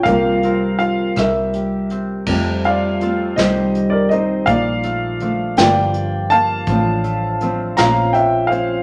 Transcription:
<<
  \new Staff \with { instrumentName = "Grand piano" } { \time 6/8 \key f \major \tempo 4. = 55 << { f''4 f''8 e''4 r8 | r8 f''4 ees''8. d''16 ees''8 | f''4. g''4 a''8~ | a''4. bes''8 g''8 f''8 | } \\ { bes'4. bes'4. | r8 d''4 c''8. bes'16 c''8 | d''4. d''4 f''8~ | f''4. f''8 e''8 c''8 | } >> }
  \new Staff \with { instrumentName = "Steel-string acoustic guitar" } { \time 6/8 \key f \major << { <f bes c' f'>8 f'4 r8 g'4 | <f a c' g'>4 a8 <ees c' ees' g'>4 c'8 | r4 a8 <g bes d' f'>4 bes8 | <f c' d' f'>4 c'8 <f c' des' f'>4 c'8 | } \\ { c4. c4. | f,4. c4. | bes,4. g,4. | a,4. bes,4. | } >> }
  \new Staff \with { instrumentName = "Harp" } { \time 6/8 \key f \major g8 <c' f' bes'>8 f'8 g4 c'8 | g8 f'8 <c' f' a'>8 g4 ees'8 | f8 a8 <f a d'>8 f4 d'8 | f8 a8 <f a c'>8 f4 des'8 | }
  \new Staff \with { instrumentName = "Fingered electric bass" } { \clef bass \time 6/8 \key f \major c,4. c,4. | f,4. c,4. | bes,,4. g,,4. | a,,4. bes,,4. | }
  \new DrumStaff \with { instrumentName = "Drums" } \drummode { \time 6/8 <hh bd>8 hh8 hh8 <hh ss>8 hh8 hh8 | <cymc bd>8 hh8 hh8 <hh sn>8 hh8 hh8 | <hh bd>8 hh8 hh8 <hh sn>8 hh8 hh8 | <hh bd>8 hh8 hh8 <hh sn>8 hh8 hh8 | }
>>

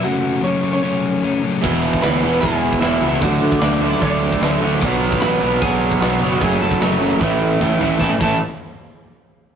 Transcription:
<<
  \new Staff \with { instrumentName = "Lead electric guitar" } { \time 4/4 \key a \major \tempo 4 = 151 <fis' fis''>4 <cis' cis''>8. <cis' cis''>16 <cis' cis''>4. r8 | r4 <b' b''>4 <gis' gis''>4 <e' e''>8. <e' e''>16 | <fis' fis''>4 <d' d''>8. <d' d''>16 <d' d''>4. r8 | r4 <b' b''>4 <gis' gis''>4 <fis' fis''>8. <fis' fis''>16 |
<gis' gis''>8 <a' a''>2. r8 | a''16 r16 a''8 r2. | }
  \new Staff \with { instrumentName = "Overdriven electric guitar" } { \clef bass \time 4/4 \key a \major <fis, cis fis a cis'>4 <fis, cis fis a cis'>8 <fis, cis fis a cis'>8 <fis, cis fis a cis'>4 <fis, cis fis a cis'>8 <fis, cis fis a cis'>8 | <e gis b e'>4 <e gis b e'>8 <e gis b e'>8 <e gis b e'>4 <e gis b e'>8 <e gis b e'>8 | <d fis a d'>4 <d fis a d'>8 <d fis a d'>8 <d fis a d'>4 <d fis a d'>8 <d fis a d'>8 | <b, fis b d'>4 <b, fis b d'>8 <b, fis b d'>8 <b, fis b d'>4 <b, fis b d'>8 <b, fis b d'>8 |
<fis, cis fis a cis'>4 <fis, cis fis a cis'>8 <fis, cis fis a cis'>8 <a, e a cis' e'>4 <a, e a cis' e'>8 <a, e a cis' e'>8 | <a, e a cis' e' a'>8 <a, e a cis' e' a'>8 r2. | }
  \new Staff \with { instrumentName = "Overdriven electric guitar" } { \clef bass \time 4/4 \key a \major r1 | <e, b, e>4 <e, b, e>8 <e, b, e>8 <e, b, e>4 <e, b, e>8 <e, b, e>8 | <d a d'>4 <d a d'>8 <d a d'>8 <d a d'>4 <d a d'>8 <d a d'>8 | <b, fis b>4 <b, fis b>8 <b, fis b>8 <b, fis b>4 <b, fis b>8 <b, fis b>8 |
<fis, cis fis>4 <fis, cis fis>8 <fis, cis fis>8 <a, e a>4 <a, e a>8 <a, e a>8 | <a, e a>8 <a, e a>8 r2. | }
  \new Staff \with { instrumentName = "Picked electric bass" } { \clef bass \time 4/4 \key a \major r1 | e,,4 d,8 e,,8 e,,4 e,,8 cis,8 | d,8 d8 d,4 d,4 d,8 d,8 | b,,4 a,,8 b,,8 b,,4 b,,8 fis,,8 |
fis,,8 fis,8 fis,,4 a,,4 a,,8 a,,8 | a,,8 a,,8 r2. | }
  \new DrumStaff \with { instrumentName = "Drums" } \drummode { \time 4/4 r4 r4 r4 r4 | <cymc bd>8. bd16 <hho sn>4 <hho bd>8. bd16 <hho sn>4 | <hho bd>8. bd16 <hho sn>4 <hho bd>8. bd16 <hho sn>4 | <cymc bd>8. bd16 <hho sn>4 <hho bd>8. bd16 <hho sn>4 |
<hho bd>8. bd16 <hho sn>4 <bd sn>4 toml8 tomfh8 | <bd sn>8 <cymc bd>8 r4 r4 r4 | }
>>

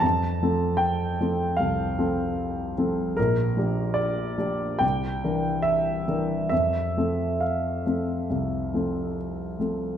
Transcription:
\new Staff \with { instrumentName = "Grand piano" } { \time 4/4 \key f \major \tempo 4 = 72 << { a''4 g''4 f''2 | bes'4 d''4 g''4 e''4 | e''4 f''2 r4 | } \\ { f,8 <f c' a'>4 <f c' a'>8 c,8 <f c' a'>4 <f c' a'>8 | bes,,8 <f d' g'>4 <f d' g'>8 c,8 <e d' bes'>4 <e d' bes'>8 | f,8 <f c' a'>4 <f c' a'>8 c,8 <f c' a'>4 <f c' a'>8 | } >> }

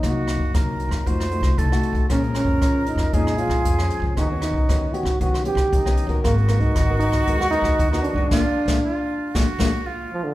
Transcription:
<<
  \new Staff \with { instrumentName = "Flute" } { \time 4/4 \key bes \phrygian \tempo 4 = 116 ges'4 bes'4 c''4 a'4 | bes'2 aes'2 | fis'2~ fis'8 r8 ees'4 | ges'1 |
f'4 f'4 ges'4 f'4 | }
  \new Staff \with { instrumentName = "Trombone" } { \time 4/4 \key bes \phrygian dis'4 r2. | des'8 des'4 ees'8 ees'8 f'4 r8 | ees'8 ees'4 fis'8 fis'8 g'4 r8 | bes8 bes16 ees'8. ees'8. ges'16 ees'8. ees'16 d'8~ |
d'2. r8 f16 d16 | }
  \new Staff \with { instrumentName = "Nylon-string guitar" } { \time 4/4 \key bes \phrygian << { <ges bes ees'>4 <ges bes ees'>4 <a ees' ges'>8 <a ees' ges'>8 <a ees' ges'>16 <a ees' ges'>8. | <f aes des'>4 <f aes des'>4 <f aes des'>8 <f aes des'>8. <f aes des'>8. | <b des' g'>16 <b des'>8. <b des' g'>16 r16 <b des' g'>16 r16 <b des' g'>8 <b des' g'>8 r16 <b des' g'>8 <b fis' bes'>16~ | <b fis' bes'>16 r16 <ces' ges' bes'>8. <ces' ges' bes'>8. <ces' ges' bes'>8 <ces' ges' bes'>8 r16 <ces' ges' bes'>8 <aes ces' d'>16 |
<aes bes d'>16 r8 <aes bes d'>16 r4 <aes bes d'>16 r16 <aes bes d'>16 r4 r16 | } \\ { c4 c4 f4 c4 | bes,4 f,4 bes,4 f,4 | ees4 ees4 ees4 ees4 | aes4 ees4 aes4 ees4 |
r1 | } >> }
  \new Staff \with { instrumentName = "Upright bass" } { \clef bass \time 4/4 \key bes \phrygian c,8. ges,16 c,8. fes,16 f,8. c,16 c,8 r16 ces,16 | bes,,8. f,16 bes,,8. f,16 f,8. f,16 f,8 r16 des,16 | ees,8. b,,16 ees,8. b,,16 b,,8. b,,16 b,,8 r16 ees,16 | aes,,8. ees,16 aes,,8. ees,16 ees,8. ees,16 ees,8 r16 f,16 |
bes,,16 r8 bes,,16 r4 bes,,16 r16 bes,,16 r4 r16 | }
  \new DrumStaff \with { instrumentName = "Drums" } \drummode { \time 4/4 <hh bd ss>8 <hh ss>16 bd16 <hh bd ss>8 hh16 <hh bd ss>16 <hh bd>16 <hh ss>16 hh16 <hh bd ss>16 <hh bd>16 ss16 hh16 <hh bd>16 | <hh bd ss>16 hh16 <hh ss>16 <hh bd>16 <hh bd ss>8 hh16 <bd ss>16 <hh bd>16 ss16 hh16 <bd ss>16 <hh bd>16 <hh ss>16 hh16 bd16 | <hh bd ss>8 <hh ss>16 bd16 <hh bd ss>8 hh16 <hh bd ss>16 <hh bd>16 <hh ss>16 hh16 <hh bd ss>16 <hh bd>16 ss16 hh16 <hh bd>16 | <hh bd ss>16 hh16 <hh ss>16 <hh bd>16 <hh bd ss>8 hh16 <bd ss>16 <hh bd>16 ss16 hh16 <bd ss>16 <hh bd>16 <hh ss>16 hh16 bd16 |
<bd sn>8. <bd sn>16 r4 <bd sn>8 <bd sn>8 r4 | }
>>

